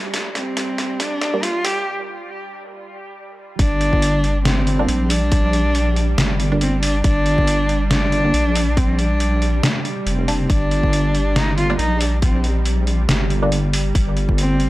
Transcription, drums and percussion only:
0.14 snare, closed hi-hat
0.35 snare, closed hi-hat
0.57 snare, closed hi-hat
0.78 snare, closed hi-hat
1.00 snare, closed hi-hat
1.21 snare, closed hi-hat
1.43 snare, closed hi-hat
1.65 snare, open hi-hat
3.59 kick, closed hi-hat
3.81 closed hi-hat
3.93 kick
4.02 closed hi-hat
4.24 closed hi-hat
4.45 snare, closed hi-hat
4.67 closed hi-hat
4.88 closed hi-hat
5.10 open hi-hat
5.32 kick, closed hi-hat
5.53 closed hi-hat
5.75 closed hi-hat
5.96 closed hi-hat
6.18 snare, closed hi-hat
6.40 closed hi-hat
6.61 closed hi-hat
6.83 open hi-hat
7.04 kick, closed hi-hat
7.26 closed hi-hat
7.38 kick
7.47 closed hi-hat
7.69 closed hi-hat
7.91 snare, closed hi-hat
8.12 closed hi-hat
8.34 closed hi-hat
8.55 open hi-hat
8.77 kick, closed hi-hat
8.99 closed hi-hat
9.20 closed hi-hat
9.42 closed hi-hat
9.63 snare, closed hi-hat
9.85 closed hi-hat
10.07 closed hi-hat
10.28 open hi-hat
10.50 kick, closed hi-hat
10.71 closed hi-hat
10.83 kick
10.93 closed hi-hat
11.15 closed hi-hat
11.36 snare, closed hi-hat
11.58 closed hi-hat
11.79 closed hi-hat
12.01 open hi-hat
12.22 kick, closed hi-hat
12.44 closed hi-hat
12.65 closed hi-hat
12.87 closed hi-hat
13.09 snare, closed hi-hat
13.30 closed hi-hat
13.52 closed hi-hat
13.73 open hi-hat
13.95 kick, closed hi-hat
14.17 closed hi-hat
14.29 kick
14.38 closed hi-hat
14.60 closed hi-hat

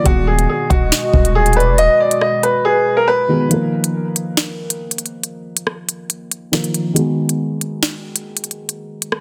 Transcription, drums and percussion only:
0.06 kick, closed hi-hat
0.39 closed hi-hat
0.70 kick, closed hi-hat
0.92 finger snap, snare
1.14 kick
1.25 closed hi-hat
1.46 closed hi-hat
1.53 closed hi-hat
1.60 closed hi-hat
1.78 closed hi-hat
2.11 closed hi-hat
2.21 cross-stick
2.43 closed hi-hat
3.51 closed hi-hat
3.84 closed hi-hat
4.16 closed hi-hat
4.37 finger snap, snare
4.70 closed hi-hat
4.91 closed hi-hat
4.98 closed hi-hat
5.06 closed hi-hat
5.24 closed hi-hat
5.57 closed hi-hat
5.67 cross-stick
5.89 closed hi-hat
6.10 closed hi-hat
6.31 closed hi-hat
6.53 finger snap, snare
6.64 closed hi-hat
6.74 closed hi-hat
6.96 closed hi-hat
7.29 closed hi-hat
7.61 closed hi-hat
7.83 finger snap, snare
8.16 closed hi-hat
8.37 closed hi-hat
8.44 closed hi-hat
8.51 closed hi-hat
8.69 closed hi-hat
9.02 closed hi-hat
9.12 cross-stick

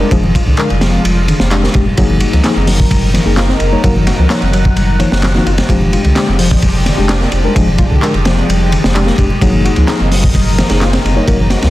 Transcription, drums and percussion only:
0.00 high conga
0.11 kick, ride
0.24 low conga
0.35 kick, ride, high conga
0.57 clap, ride
0.70 ride, high conga
0.81 snare, ride
1.04 ride, high conga
1.27 ride, low conga
1.39 snare, high conga
1.51 clap, ride
1.64 snare
1.74 kick, ride
1.86 high conga
1.97 kick, ride
2.10 low conga
2.20 ride, high conga
2.33 ride
2.44 snare, clap, ride
2.56 high conga
2.67 snare, open hi-hat
2.80 kick
2.90 kick, ride, high conga
3.14 snare, ride, low conga
3.25 high conga
3.37 snare, clap, ride
3.49 snare
3.60 ride
3.73 high conga
3.84 kick, ride
3.96 low conga
4.06 snare, ride, high conga
4.30 snare, clap, ride
4.42 ride, high conga
4.53 ride
4.65 kick
4.76 ride, high conga
5.00 ride, low conga
5.12 snare, high conga
5.22 snare, clap, ride
5.35 snare
5.47 ride
5.58 snare, ride, high conga
5.69 kick, ride
5.81 low conga
5.93 ride, high conga
6.04 ride
6.16 snare, clap, ride
6.28 high conga
6.39 open hi-hat
6.51 kick
6.62 kick, ride, high conga
6.86 snare, ride, low conga
6.98 muted conga, high conga
7.09 snare, clap, ride
7.21 snare
7.32 ride
7.44 high conga
7.56 kick, ride
7.68 low conga
7.78 kick, ride, high conga
8.02 clap, ride
8.14 ride, high conga
8.25 snare, ride
8.37 muted conga
8.49 ride, high conga
8.72 ride, low conga
8.84 snare, high conga
8.95 clap, ride
9.07 snare
9.18 kick, ride
9.30 muted conga, high conga
9.41 kick, ride
9.53 low conga
9.65 ride, high conga
9.76 ride
9.88 snare, clap, ride
10.00 high conga
10.12 snare, open hi-hat
10.24 kick
10.34 kick, ride, high conga
10.58 snare, ride, low conga
10.70 snare, ride, muted conga, high conga
10.81 snare, clap, ride
10.93 snare, ride
11.06 ride
11.17 high conga
11.28 kick, ride
11.40 low conga
11.50 snare, ride, high conga
11.62 snare, ride

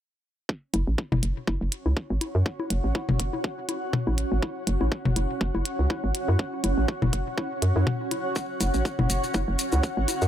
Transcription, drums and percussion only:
0.49 kick
0.74 closed hi-hat, high conga
0.98 kick
1.12 mid tom, high conga
1.23 closed hi-hat
1.47 kick, high conga
1.72 closed hi-hat
1.86 high conga
1.97 kick
2.21 closed hi-hat, high conga
2.46 kick
2.60 high conga
2.70 closed hi-hat
2.95 kick, high conga
3.09 mid tom
3.20 kick, closed hi-hat
3.33 high conga
3.44 kick
3.69 closed hi-hat, high conga
3.93 kick, mid tom
4.07 high conga
4.18 closed hi-hat
4.42 kick, high conga
4.67 closed hi-hat
4.81 high conga
4.92 kick
5.05 mid tom
5.16 closed hi-hat, high conga
5.41 kick
5.55 high conga
5.65 closed hi-hat
5.90 kick, high conga
6.15 closed hi-hat
6.28 high conga
6.39 kick
6.64 closed hi-hat, high conga
6.88 kick
7.02 mid tom, high conga
7.13 kick, closed hi-hat
7.38 kick, high conga
7.62 closed hi-hat
7.76 high conga
7.87 kick, mid tom
8.11 closed hi-hat, high conga
8.35 kick, maracas
8.60 closed hi-hat, high conga, maracas
8.74 maracas
8.85 kick, maracas
8.99 mid tom, high conga
9.10 closed hi-hat, maracas
9.24 maracas
9.34 kick, high conga, maracas
9.59 closed hi-hat, maracas
9.72 high conga, maracas
9.83 kick, maracas
10.08 closed hi-hat, high conga, maracas
10.21 maracas

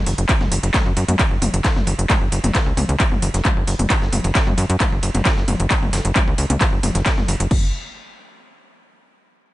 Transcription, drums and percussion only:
0.06 open hi-hat
0.18 closed hi-hat
0.29 kick, clap, closed hi-hat, ride
0.41 snare, mid tom
0.52 open hi-hat, ride
0.63 closed hi-hat, ride
0.74 kick, snare, clap, closed hi-hat, mid tom, ride
0.97 open hi-hat, ride
1.08 closed hi-hat, mid tom
1.19 kick, clap, closed hi-hat, ride
1.42 open hi-hat, mid tom, ride
1.54 closed hi-hat, ride
1.64 kick, snare, clap, closed hi-hat, ride
1.76 snare, mid tom
1.87 open hi-hat, ride
1.99 closed hi-hat
2.10 kick, clap, closed hi-hat, mid tom, ride
2.32 open hi-hat, ride
2.44 closed hi-hat, mid tom, ride
2.55 kick, snare, clap, closed hi-hat, ride
2.77 open hi-hat, mid tom, ride
2.89 closed hi-hat
3.00 kick, clap, closed hi-hat, ride
3.12 mid tom
3.22 open hi-hat, ride
3.34 snare, closed hi-hat
3.45 kick, clap, closed hi-hat, mid tom
3.67 open hi-hat
3.79 closed hi-hat, mid tom
3.90 kick, clap, closed hi-hat, ride
4.02 snare
4.12 open hi-hat, mid tom, ride
4.24 closed hi-hat, ride
4.35 kick, snare, clap, closed hi-hat, ride
4.47 mid tom
4.58 open hi-hat, ride
4.70 closed hi-hat
4.80 kick, clap, closed hi-hat, mid tom, ride
5.03 open hi-hat, ride
5.15 closed hi-hat, mid tom, ride
5.25 kick, snare, clap, closed hi-hat, ride
5.37 snare
5.48 open hi-hat, mid tom, ride
5.60 closed hi-hat
5.70 kick, clap, closed hi-hat, ride
5.82 mid tom
5.93 snare, open hi-hat, ride
6.05 closed hi-hat
6.16 kick, clap, closed hi-hat, mid tom, ride
6.38 open hi-hat, ride
6.50 closed hi-hat, mid tom
6.61 kick, clap, closed hi-hat, ride
6.83 open hi-hat, mid tom, ride
6.95 snare, closed hi-hat
7.06 kick, snare, clap, closed hi-hat, ride
7.18 snare, mid tom
7.28 open hi-hat, ride
7.40 closed hi-hat, ride
7.51 kick, crash

